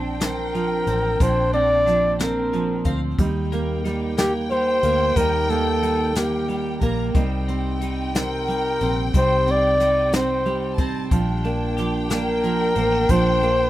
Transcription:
0.00 0.83 A#1 loud
0.00 0.53 F3 medium
0.00 0.19 C4 medium
0.00 1.20 D4 medium
0.00 1.85 D4 medium
0.00 2.82 G5 medium
0.20 0.87 C4 medium
0.20 1.24 A#4 medium
0.20 snare loud
0.20 closed hi-hat medium
0.55 1.20 F3 medium
0.55 closed hi-hat soft
0.87 1.18 A1 medium
0.87 1.52 C4 medium
0.87 closed hi-hat medium
1.20 2.82 A#1 loud
1.20 3.19 A#2 medium
1.20 1.85 F3 medium
1.20 3.20 D4 medium
1.20 1.53 C5 loud
1.20 kick loud
1.20 closed hi-hat medium
1.53 2.19 C4 medium
1.53 2.16 D5 loud
1.53 closed hi-hat soft
1.86 2.52 F3 medium
1.86 3.25 D4 medium
1.86 snare soft
1.86 closed hi-hat medium
2.19 2.85 C4 medium
2.19 2.92 A#4 medium
2.19 snare loud
2.19 closed hi-hat loud
2.53 3.19 F3 medium
2.53 closed hi-hat medium
2.85 3.17 D2 medium
2.85 3.26 C4 medium
2.85 3.00 F5 medium
2.85 kick medium
2.85 closed hi-hat medium
3.19 4.79 D#2 loud
3.19 3.85 G3 medium
3.19 5.17 D#4 medium
3.19 6.77 G5 loud
3.19 kick loud
3.19 closed hi-hat medium
3.52 4.16 A#3 medium
3.52 closed hi-hat medium
3.85 4.51 G3 medium
3.85 5.81 D#4 medium
3.85 snare soft
3.85 closed hi-hat medium
4.18 4.82 A#3 medium
4.18 4.33 G4 medium
4.18 snare loud
4.18 closed hi-hat loud
4.51 5.16 G3 medium
4.51 5.19 C5 loud
4.51 closed hi-hat soft
4.83 5.14 D2 medium
4.83 5.49 A#3 medium
4.83 closed hi-hat medium
5.16 6.77 D#2 loud
5.16 7.14 D#3 medium
5.16 5.82 G3 medium
5.16 7.15 D#4 medium
5.16 5.51 A#4 loud
5.16 kick loud
5.16 closed hi-hat medium
5.50 6.14 A#3 medium
5.50 6.19 A4 loud
5.50 closed hi-hat soft
5.82 6.48 G3 medium
5.82 7.81 D#4 medium
5.82 closed hi-hat medium
6.15 6.81 A#3 medium
6.15 6.91 G4 medium
6.15 snare loud
6.15 closed hi-hat loud
6.48 7.15 G3 medium
6.48 closed hi-hat soft
6.81 7.13 A#1 medium
6.81 7.22 A#3 medium
6.81 7.15 A#5 medium
6.81 kick medium
6.81 closed hi-hat medium
7.13 8.77 C2 loud
7.13 9.13 C3 medium
7.13 7.81 G3 medium
7.13 9.14 D#4 medium
7.13 10.73 G5 loud
7.13 kick loud
7.13 closed hi-hat medium
7.48 8.14 C4 medium
7.48 closed hi-hat soft
7.81 8.48 G3 medium
7.81 9.79 D#4 medium
7.81 closed hi-hat medium
8.15 8.81 C4 medium
8.15 9.11 A#4 medium
8.15 snare loud
8.15 closed hi-hat medium
8.48 9.15 G3 medium
8.48 closed hi-hat medium
8.81 9.12 A#1 medium
8.81 9.47 C4 medium
8.81 closed hi-hat medium
9.14 10.78 C2 medium
9.14 11.11 C3 medium
9.14 9.80 G3 medium
9.14 11.11 D#4 medium
9.14 9.52 C5 loud
9.14 kick loud
9.14 closed hi-hat medium
9.47 10.12 C4 medium
9.47 10.15 D5 loud
9.47 closed hi-hat soft
9.80 10.45 G3 medium
9.80 11.18 D#4 medium
9.80 snare soft
9.80 closed hi-hat medium
10.13 10.78 C4 medium
10.13 10.84 C5 medium
10.13 snare loud
10.13 closed hi-hat medium
10.46 11.11 G3 medium
10.46 closed hi-hat soft
10.78 11.09 A1 medium
10.78 11.18 C4 medium
10.78 11.11 A5 medium
10.78 kick medium
10.78 closed hi-hat medium
11.11 12.72 A#1 loud
11.11 11.78 F3 medium
11.11 13.10 D4 medium
11.11 13.70 G5 loud
11.11 kick medium
11.11 closed hi-hat medium
11.44 12.11 A#3 medium
11.44 12.10 D4 medium
11.44 closed hi-hat soft
11.77 12.43 F3 medium
11.77 13.70 G4 medium
11.77 snare soft
11.77 closed hi-hat medium
12.10 12.76 A#3 medium
12.10 12.75 D4 medium
12.10 13.12 A#4 loud
12.10 snare loud
12.10 closed hi-hat loud
12.43 13.09 F3 medium
12.43 13.70 A#3 medium
12.43 closed hi-hat soft
12.76 13.07 A1 medium
12.76 13.42 A#3 medium
12.76 12.92 C4 medium
12.76 closed hi-hat medium
12.92 13.40 D4 medium
13.09 13.70 A#1 loud
13.09 13.70 F3 medium
13.09 13.70 D4 medium
13.09 13.70 C5 loud
13.09 kick loud
13.09 closed hi-hat medium
13.41 13.70 A#3 medium
13.41 13.70 D4 medium
13.41 closed hi-hat soft

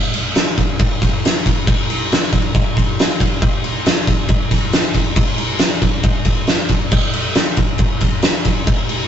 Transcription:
0.14 ride medium
0.35 snare loud
0.35 ride loud
0.57 kick medium
0.57 ride medium
0.79 kick loud
0.79 ride loud
1.02 kick medium
1.02 ride medium
1.25 snare loud
1.25 ride loud
1.46 kick medium
1.46 ride medium
1.67 kick loud
1.67 ride loud
1.90 ride medium
2.12 snare loud
2.12 ride loud
2.32 kick medium
2.32 ride medium
2.55 kick loud
2.55 ride loud
2.77 kick medium
2.77 ride medium
2.99 snare loud
2.99 ride loud
3.20 kick medium
3.20 ride medium
3.42 kick loud
3.42 ride loud
3.64 ride medium
3.86 snare loud
3.86 ride loud
4.07 kick medium
4.07 ride medium
4.28 kick loud
4.28 ride loud
4.51 kick medium
4.51 ride medium
4.73 snare loud
4.73 ride loud
4.95 kick medium
4.95 ride medium
5.16 kick loud
5.16 ride loud
5.38 ride medium
5.59 snare loud
5.59 ride loud
5.82 kick medium
5.82 ride medium
6.03 kick loud
6.03 ride loud
6.25 kick medium
6.25 ride medium
6.47 snare loud
6.47 ride medium
6.69 kick medium
6.69 ride medium
6.91 kick loud
6.91 crash loud
7.13 ride medium
7.35 snare loud
7.35 ride loud
7.57 kick medium
7.57 ride medium
7.78 kick loud
7.78 ride loud
8.01 kick medium
8.01 ride medium
8.22 snare loud
8.22 ride loud
8.45 kick medium
8.45 ride medium
8.67 kick loud
8.67 ride loud
8.89 ride medium

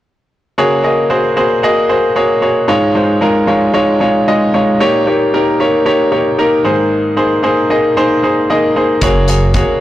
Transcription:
0.58 1.33 C#3 medium
0.58 0.82 A#3 medium
0.58 0.82 F#4 medium
0.58 0.82 G#4 medium
0.58 0.83 C#5 medium
0.84 1.08 A#3 medium
0.84 1.08 F#4 medium
0.84 1.08 G#4 medium
0.84 1.09 D#5 medium
1.10 1.35 A#3 medium
1.10 1.35 F#4 medium
1.10 1.35 G#4 medium
1.10 1.35 C5 medium
1.36 1.61 A#3 medium
1.36 1.61 F#4 medium
1.36 1.61 G#4 medium
1.36 1.61 C5 medium
1.63 1.87 A#3 medium
1.63 1.88 F#4 medium
1.63 1.88 G#4 medium
1.63 1.88 D#5 medium
1.89 2.14 A#3 medium
1.89 2.14 F#4 medium
1.89 2.14 G#4 medium
1.89 2.14 C5 medium
2.16 2.40 A#3 medium
2.16 2.40 F#4 medium
2.16 2.40 G#4 medium
2.16 2.40 C#5 medium
2.42 2.67 A#3 medium
2.42 2.66 F#4 medium
2.42 2.66 G#4 medium
2.42 2.67 C#5 medium
2.68 3.44 G#2 medium
2.68 2.93 G#3 medium
2.68 2.93 D#4 medium
2.68 2.93 F4 medium
2.68 2.93 C#5 loud
2.95 3.19 G#3 medium
2.95 3.19 D#4 medium
2.95 3.20 F4 medium
2.95 3.20 C5 medium
3.21 3.46 G#3 medium
3.21 3.46 D#4 medium
3.21 3.46 F4 medium
3.21 3.46 A#4 medium
3.47 3.72 G#3 medium
3.47 3.72 D#4 medium
3.47 3.72 F4 medium
3.47 3.72 C#5 medium
3.73 3.98 G#3 medium
3.73 3.98 D#4 medium
3.73 3.99 F4 medium
3.73 3.98 C#5 medium
4.00 4.25 G#3 medium
4.00 4.25 D#4 medium
4.00 4.25 F4 medium
4.00 4.25 C#5 medium
4.28 4.52 G#3 medium
4.28 4.52 D#4 medium
4.28 4.52 F4 medium
4.28 4.52 D#5 medium
4.54 4.78 G#3 medium
4.54 4.78 D#4 medium
4.54 4.78 F4 medium
4.54 4.78 C#5 medium
4.80 5.56 A#2 medium
4.80 5.04 A#3 medium
4.80 5.04 D#4 medium
4.80 5.05 G4 medium
4.80 5.05 C#5 loud
5.07 5.31 A#3 medium
5.07 5.31 D#4 medium
5.07 5.31 G4 medium
5.07 5.31 C#5 medium
5.34 5.58 A#3 medium
5.34 5.57 D#4 medium
5.34 5.58 G4 medium
5.34 5.58 A#4 medium
5.60 5.84 A#3 medium
5.60 5.84 D#4 medium
5.60 5.84 G4 medium
5.60 5.84 C#5 medium
5.85 6.10 A#3 medium
5.85 6.10 D#4 medium
5.85 6.10 G4 medium
5.85 6.10 C#5 medium
6.12 6.36 A#3 medium
6.12 6.36 D#4 medium
6.12 6.36 G4 medium
6.12 6.36 C#5 medium
6.38 6.63 A#3 medium
6.38 6.63 D#4 medium
6.38 6.63 G4 medium
6.38 6.63 A#4 medium
6.64 7.40 G#2 medium
6.64 7.40 D#3 medium
6.64 7.13 A#3 medium
6.64 7.13 D#4 medium
6.64 7.13 G#4 medium
6.64 7.13 C5 medium
7.16 7.41 A#3 medium
7.16 7.41 D#4 medium
7.16 7.41 G#4 medium
7.16 7.42 C5 medium
7.43 7.68 A#3 medium
7.43 7.68 D#4 medium
7.43 7.68 G#4 medium
7.43 7.68 C5 medium
7.70 7.94 A#3 medium
7.70 7.95 D#4 medium
7.70 7.95 G#4 medium
7.70 7.94 D#5 medium
7.97 8.21 A#3 medium
7.97 8.21 D#4 medium
7.97 8.21 G#4 medium
7.97 8.21 C5 medium
8.23 8.47 A#3 medium
8.23 8.47 D#4 medium
8.23 8.47 G#4 medium
8.23 8.48 C5 medium
8.50 8.74 A#3 medium
8.50 8.74 D#4 medium
8.50 8.74 G#4 medium
8.50 8.74 D#5 medium
8.76 9.00 A#3 medium
8.76 9.00 D#4 medium
8.76 9.00 G#4 medium
8.76 9.00 C5 medium
9.01 9.65 F#1 loud
9.01 9.78 C#3 medium
9.01 9.27 A#3 medium
9.01 9.27 F#4 medium
9.01 9.27 G#4 medium
9.01 9.27 C#5 loud
9.01 kick medium
9.01 closed hi-hat medium
9.28 9.53 A#3 medium
9.28 9.53 F#4 medium
9.28 9.53 G#4 medium
9.28 9.53 C#5 medium
9.28 closed hi-hat medium
9.54 9.79 A#3 medium
9.54 9.79 F#4 medium
9.54 9.79 G#4 medium
9.54 9.79 C#5 medium
9.54 kick medium
9.54 closed hi-hat medium

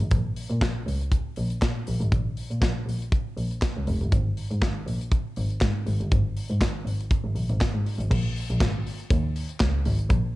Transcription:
0.00 0.09 G#1 medium
0.00 closed hi-hat soft
0.11 0.30 A#1 medium
0.11 kick loud
0.11 closed hi-hat medium
0.36 open hi-hat medium
0.50 0.60 A#2 medium
0.50 closed hi-hat soft
0.61 0.79 A#1 medium
0.61 kick loud
0.61 snare loud
0.61 clap medium
0.61 closed hi-hat medium
0.86 1.15 C#2 medium
0.86 open hi-hat medium
1.01 closed hi-hat soft
1.12 kick medium
1.12 closed hi-hat medium
1.36 1.55 A#1 medium
1.36 open hi-hat medium
1.50 closed hi-hat soft
1.62 1.72 A#2 medium
1.62 kick loud
1.62 snare medium
1.62 clap medium
1.62 closed hi-hat medium
1.87 1.97 A#1 medium
1.87 open hi-hat medium
2.01 2.09 G#1 medium
2.01 closed hi-hat soft
2.12 2.30 A#1 medium
2.12 kick loud
2.12 closed hi-hat soft
2.37 open hi-hat medium
2.51 2.59 A#2 medium
2.51 closed hi-hat soft
2.61 2.79 A#1 medium
2.61 kick loud
2.61 snare loud
2.61 clap medium
2.61 closed hi-hat medium
2.86 3.14 A#1 medium
2.86 open hi-hat medium
3.02 closed hi-hat soft
3.12 kick loud
3.12 closed hi-hat medium
3.37 3.55 A#1 medium
3.37 open hi-hat medium
3.51 closed hi-hat soft
3.62 kick loud
3.62 snare loud
3.62 clap medium
3.62 closed hi-hat medium
3.77 3.84 C#2 medium
3.87 3.97 F1 medium
3.87 open hi-hat medium
4.01 4.09 G1 medium
4.01 closed hi-hat soft
4.12 4.30 G#1 medium
4.12 kick loud
4.12 closed hi-hat medium
4.37 open hi-hat medium
4.51 4.59 G#2 medium
4.51 closed hi-hat soft
4.62 4.80 G#1 medium
4.62 kick loud
4.62 snare medium
4.62 clap medium
4.62 closed hi-hat medium
4.86 5.15 A#1 medium
4.86 open hi-hat medium
5.01 closed hi-hat soft
5.12 kick loud
5.12 closed hi-hat medium
5.36 5.55 G#1 medium
5.36 open hi-hat medium
5.50 closed hi-hat soft
5.61 5.72 G#2 medium
5.61 kick loud
5.61 snare loud
5.61 clap medium
5.61 closed hi-hat medium
5.87 5.97 G#1 medium
5.87 open hi-hat medium
6.00 6.08 G1 medium
6.00 closed hi-hat soft
6.11 6.30 G#1 medium
6.11 kick loud
6.11 closed hi-hat medium
6.37 open hi-hat medium
6.50 6.58 G#2 medium
6.50 closed hi-hat soft
6.61 6.79 G#1 medium
6.61 kick medium
6.61 snare medium
6.61 clap medium
6.61 closed hi-hat medium
6.85 7.04 G#1 medium
6.85 open hi-hat medium
7.01 closed hi-hat soft
7.11 kick loud
7.11 closed hi-hat medium
7.24 7.32 G#1 medium
7.35 7.46 A#1 medium
7.35 open hi-hat medium
7.49 7.58 G#1 medium
7.49 closed hi-hat soft
7.61 kick loud
7.61 snare loud
7.61 clap medium
7.61 closed hi-hat medium
7.74 7.82 G#2 medium
7.86 open hi-hat medium
7.99 8.07 G#1 medium
7.99 closed hi-hat soft
8.11 8.29 A#1 loud
8.11 kick loud
8.11 crash loud
8.36 open hi-hat medium
8.50 8.58 A#1 loud
8.50 closed hi-hat soft
8.60 8.79 G#1 medium
8.60 kick loud
8.60 snare loud
8.60 clap medium
8.60 closed hi-hat medium
8.87 open hi-hat medium
9.00 closed hi-hat soft
9.10 9.29 D#2 loud
9.10 kick loud
9.10 closed hi-hat medium
9.36 open hi-hat medium
9.49 closed hi-hat soft
9.60 9.78 C#2 loud
9.60 kick loud
9.60 snare loud
9.60 clap medium
9.60 closed hi-hat medium
9.85 10.04 G#1 loud
9.85 open hi-hat medium
9.99 closed hi-hat soft
10.10 10.28 A#1 loud
10.10 kick loud
10.10 closed hi-hat medium

